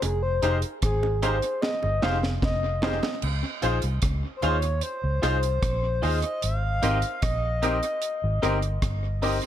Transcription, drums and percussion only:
0.02 closed hi-hat, high bongo
0.43 closed hi-hat
0.62 closed hi-hat
0.82 kick, cross-stick, closed hi-hat
1.03 high bongo
1.23 closed hi-hat, high bongo, low bongo
1.42 closed hi-hat
1.62 snare, high bongo
1.83 high bongo
2.02 snare, high bongo
2.23 snare
2.42 kick, snare
2.82 snare, low bongo
3.03 snare, high bongo
3.22 crash
3.62 closed hi-hat
3.82 closed hi-hat
4.02 kick, cross-stick, closed hi-hat
4.42 closed hi-hat
4.62 closed hi-hat
4.81 closed hi-hat
5.23 cross-stick, closed hi-hat
5.43 closed hi-hat
5.62 kick, cross-stick, closed hi-hat
6.03 open hi-hat
6.22 closed hi-hat
6.42 closed hi-hat
6.83 closed hi-hat
7.02 closed hi-hat
7.22 kick, cross-stick, closed hi-hat
7.63 closed hi-hat
7.83 closed hi-hat
8.02 closed hi-hat
8.43 cross-stick, closed hi-hat
8.62 closed hi-hat
8.82 kick, cross-stick, closed hi-hat
9.22 open hi-hat
9.42 closed hi-hat

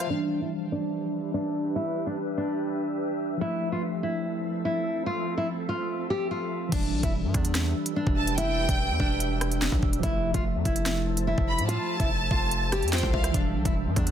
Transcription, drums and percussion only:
6.72 kick, closed hi-hat, crash
7.03 kick, closed hi-hat
7.34 kick, closed hi-hat
7.45 closed hi-hat
7.55 snare, closed hi-hat
7.86 closed hi-hat
8.07 kick
8.27 closed hi-hat
8.38 closed hi-hat
8.69 kick, closed hi-hat
9.00 kick
9.20 closed hi-hat
9.41 cross-stick, closed hi-hat
9.52 closed hi-hat
9.62 snare
9.72 kick
9.83 kick
9.93 closed hi-hat
10.03 kick, closed hi-hat
10.34 kick, closed hi-hat
10.65 kick, closed hi-hat
10.76 closed hi-hat
10.86 snare, closed hi-hat
11.17 closed hi-hat
11.38 kick
11.59 closed hi-hat
11.69 closed hi-hat
12.00 kick, closed hi-hat
12.31 kick
12.51 closed hi-hat
12.72 cross-stick, closed hi-hat
12.83 closed hi-hat
12.88 closed hi-hat
12.93 snare, closed hi-hat
12.98 closed hi-hat
13.03 kick
13.14 kick
13.24 cross-stick, closed hi-hat
13.34 kick, closed hi-hat
13.65 kick, closed hi-hat
13.96 kick, closed hi-hat
14.07 closed hi-hat

